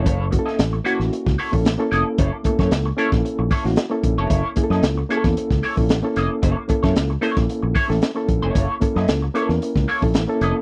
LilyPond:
<<
  \new Staff \with { instrumentName = "Clean electric guitar" } { \time 4/4 \key fis \mixolydian \tempo 4 = 113 <ais e' a' cis''>16 r8 <ais e' a' dis''>16 r8 <ais e' a' cis''>16 r8. <ais e' a' cis''>16 r8. <ais e' a' dis''>16 r16 | <ais e' a' cis''>16 r8 <ais e' a' cis''>16 r8 <ais e' a' cis''>16 r8. <ais e' a' cis''>16 r4 <ais e' a' cis''>16 | <ais e' a' cis''>16 r8 <ais e' a' dis''>16 r8 <ais e' a' cis''>16 r8. <ais e' a' cis''>16 r8. <ais e' a' dis''>16 r16 | <ais e' a' cis''>8 r16 <ais e' a' cis''>16 r8 <ais e' a' cis''>8 r8 <ais e' a' cis''>16 r4 <ais e' a' cis''>16 |
<ais e' a' cis''>16 r8 <ais e' a' dis''>16 r8 <ais e' a' cis''>16 r8. <ais e' a' cis''>16 r8. <ais e' a' dis''>16 r16 | }
  \new Staff \with { instrumentName = "Reed electric piano" } { \time 4/4 \key fis \mixolydian <ais cis' e' a'>16 r16 <ais cis' e' fis' a'>8. r16 <ais cis' e' fis'>4 r16 <ais cis' e' a'>8 <ais cis' e' a'>8.~ | <ais cis' e' a'>16 r16 <a ais cis' e' a'>8. r16 <ais cis' e' a'>4 r16 <ais cis' e' fis'>8 <ais cis' e' a'>8.~ | <ais cis' e' a'>16 r16 <ais cis' e' gis' a'>8. r16 <ais cis' e' gis' a'>4 r16 <ais cis' e' a'>8 <ais cis' e' a'>8.~ | <ais cis' e' a'>16 r16 <ais cis' e' a'>8. r16 <ais cis' e' a'>4 r16 <ais cis' e' a'>8 <ais cis' e' a'>8.~ |
<ais cis' e' a'>16 r16 <ais cis' e' a'>8. r16 <ais cis' e' a' ais'>4 r16 <ais cis' e' a'>8 <ais cis' e' a'>8. | }
  \new Staff \with { instrumentName = "Fingered electric bass" } { \clef bass \time 4/4 \key fis \mixolydian fis,,8. r16 a,,8 r16 a,,16 r16 cis,16 r16 ais,,16 a,,16 r16 eis,,16 r16 | fis,,16 r8 fis,16 cis,8 r16 ais,,16 r16 ais,,16 r16 a,,16 r8 ais,,16 eis,,16 | fis,,16 r8 fis,16 cis,8 r16 e,16 r16 cis,16 r16 ais,,16 a,,16 r16 eis,,16 r16 | fis,,16 r8 fis,16 cis,8 r16 ais,,16 r16 ais,,16 r16 a,,16 r8 ais,,16 eis,,16 |
fis,,16 r8 fis,16 cis,8 r16 e,16 r16 cis,16 r16 ais,,16 a,,16 r16 eis,,16 r16 | }
  \new DrumStaff \with { instrumentName = "Drums" } \drummode { \time 4/4 <hh bd>8 <hh bd>16 sn16 <hh sn>8 hh16 sn16 hh16 <bd sn>16 hho16 bd16 <hh sn>8 hh8 | <hh bd>8 <hh bd>16 <bd sn>16 <hh sn>8 hh16 <bd sn>16 hh8 <hho bd>16 sn16 <hh sn>8 <hh bd>8 | <hh bd>8 <hh bd>16 sn16 <hh sn>8 hh16 <bd sn>16 hh16 <bd sn>16 hho16 bd16 <hh sn>8 hh8 | <hh bd>8 <hh bd>16 <bd sn>16 <hh sn>8 hh16 <bd sn>16 hh8 <hho bd>16 sn16 <hh sn>8 <hh bd>8 |
<hh bd>8 <hh bd>16 sn16 <hh sn>8 hh16 sn16 hh16 <bd sn>16 hho16 bd16 <hh sn>8 hh8 | }
>>